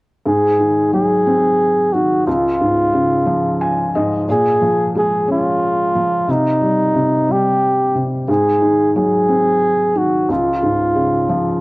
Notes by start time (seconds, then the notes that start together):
0.26 G#2 G#4
0.59 D#3
0.93 F#3 G#4
1.27 C4
1.93 D#3 F#4
2.26 C#2 F4
2.60 G#2
2.93 C#3
3.26 F3
3.61 G#5
3.95 G#2 D#5
4.28 A#2 G#4
4.61 F3
4.95 G#3 G#4
5.28 C#4 F4
5.95 F3
6.28 C3 D#4
6.61 G3
6.95 C3
7.28 G3 G4
7.95 C3
8.28 G#2 G#4
8.62 D#3
8.96 F#3 G#4
9.29 C4
9.95 D#3 F#4
10.29 C#2 F4
10.62 G#2
10.95 C#3
11.29 F3